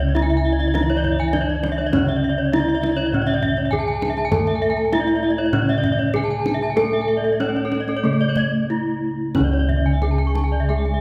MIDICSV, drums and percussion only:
0, 0, Header, 1, 2, 480
1, 0, Start_track
1, 0, Tempo, 595238
1, 1563, Time_signature, 4, 2, 24, 8
1, 3482, Tempo, 607287
1, 4922, Tempo, 633580
1, 6362, Tempo, 662252
1, 8513, End_track
2, 0, Start_track
2, 0, Title_t, "Kendang"
2, 131, Note_on_c, 9, 63, 59
2, 212, Note_off_c, 9, 63, 0
2, 245, Note_on_c, 9, 62, 24
2, 326, Note_off_c, 9, 62, 0
2, 489, Note_on_c, 9, 62, 25
2, 569, Note_off_c, 9, 62, 0
2, 604, Note_on_c, 9, 63, 50
2, 685, Note_off_c, 9, 63, 0
2, 723, Note_on_c, 9, 62, 24
2, 803, Note_off_c, 9, 62, 0
2, 839, Note_on_c, 9, 64, 54
2, 919, Note_off_c, 9, 64, 0
2, 956, Note_on_c, 9, 62, 21
2, 1037, Note_off_c, 9, 62, 0
2, 1073, Note_on_c, 9, 63, 49
2, 1073, Note_on_c, 9, 64, 50
2, 1154, Note_off_c, 9, 63, 0
2, 1154, Note_off_c, 9, 64, 0
2, 1318, Note_on_c, 9, 63, 61
2, 1399, Note_off_c, 9, 63, 0
2, 1441, Note_on_c, 9, 62, 23
2, 1522, Note_off_c, 9, 62, 0
2, 1557, Note_on_c, 9, 63, 42
2, 1557, Note_on_c, 9, 64, 71
2, 1638, Note_off_c, 9, 63, 0
2, 1638, Note_off_c, 9, 64, 0
2, 1684, Note_on_c, 9, 62, 23
2, 1764, Note_off_c, 9, 62, 0
2, 2044, Note_on_c, 9, 63, 59
2, 2124, Note_off_c, 9, 63, 0
2, 2172, Note_on_c, 9, 62, 20
2, 2252, Note_off_c, 9, 62, 0
2, 2285, Note_on_c, 9, 63, 63
2, 2366, Note_off_c, 9, 63, 0
2, 2402, Note_on_c, 9, 62, 25
2, 2482, Note_off_c, 9, 62, 0
2, 2641, Note_on_c, 9, 62, 22
2, 2722, Note_off_c, 9, 62, 0
2, 2760, Note_on_c, 9, 64, 53
2, 2840, Note_off_c, 9, 64, 0
2, 2879, Note_on_c, 9, 62, 19
2, 2959, Note_off_c, 9, 62, 0
2, 3002, Note_on_c, 9, 64, 60
2, 3082, Note_off_c, 9, 64, 0
2, 3244, Note_on_c, 9, 63, 62
2, 3325, Note_off_c, 9, 63, 0
2, 3362, Note_on_c, 9, 62, 23
2, 3442, Note_off_c, 9, 62, 0
2, 3481, Note_on_c, 9, 64, 83
2, 3560, Note_off_c, 9, 64, 0
2, 3603, Note_on_c, 9, 62, 25
2, 3682, Note_off_c, 9, 62, 0
2, 3962, Note_on_c, 9, 63, 60
2, 4041, Note_off_c, 9, 63, 0
2, 4082, Note_on_c, 9, 62, 21
2, 4161, Note_off_c, 9, 62, 0
2, 4322, Note_on_c, 9, 62, 21
2, 4401, Note_off_c, 9, 62, 0
2, 4440, Note_on_c, 9, 63, 58
2, 4519, Note_off_c, 9, 63, 0
2, 4563, Note_on_c, 9, 62, 19
2, 4642, Note_off_c, 9, 62, 0
2, 4681, Note_on_c, 9, 64, 59
2, 4760, Note_off_c, 9, 64, 0
2, 4801, Note_on_c, 9, 62, 18
2, 4880, Note_off_c, 9, 62, 0
2, 4919, Note_on_c, 9, 63, 51
2, 4919, Note_on_c, 9, 64, 51
2, 4995, Note_off_c, 9, 63, 0
2, 4995, Note_off_c, 9, 64, 0
2, 5162, Note_on_c, 9, 63, 49
2, 5238, Note_off_c, 9, 63, 0
2, 5279, Note_on_c, 9, 62, 17
2, 5355, Note_off_c, 9, 62, 0
2, 5398, Note_on_c, 9, 63, 47
2, 5398, Note_on_c, 9, 64, 54
2, 5474, Note_off_c, 9, 63, 0
2, 5474, Note_off_c, 9, 64, 0
2, 5521, Note_on_c, 9, 62, 20
2, 5597, Note_off_c, 9, 62, 0
2, 5761, Note_on_c, 9, 62, 17
2, 5836, Note_off_c, 9, 62, 0
2, 5878, Note_on_c, 9, 63, 52
2, 5954, Note_off_c, 9, 63, 0
2, 6000, Note_on_c, 9, 62, 21
2, 6076, Note_off_c, 9, 62, 0
2, 6117, Note_on_c, 9, 63, 47
2, 6193, Note_off_c, 9, 63, 0
2, 6239, Note_on_c, 9, 62, 21
2, 6315, Note_off_c, 9, 62, 0
2, 6478, Note_on_c, 9, 62, 19
2, 6550, Note_off_c, 9, 62, 0
2, 6590, Note_on_c, 9, 64, 60
2, 6663, Note_off_c, 9, 64, 0
2, 7309, Note_on_c, 9, 63, 38
2, 7309, Note_on_c, 9, 64, 48
2, 7381, Note_off_c, 9, 63, 0
2, 7381, Note_off_c, 9, 64, 0
2, 7437, Note_on_c, 9, 62, 16
2, 7510, Note_off_c, 9, 62, 0
2, 7560, Note_on_c, 9, 64, 46
2, 7633, Note_off_c, 9, 64, 0
2, 7679, Note_on_c, 9, 62, 16
2, 7751, Note_off_c, 9, 62, 0
2, 7795, Note_on_c, 9, 63, 41
2, 7868, Note_off_c, 9, 63, 0
2, 7918, Note_on_c, 9, 62, 16
2, 7990, Note_off_c, 9, 62, 0
2, 8038, Note_on_c, 9, 63, 44
2, 8110, Note_off_c, 9, 63, 0
2, 8400, Note_on_c, 9, 62, 18
2, 8473, Note_off_c, 9, 62, 0
2, 8513, End_track
0, 0, End_of_file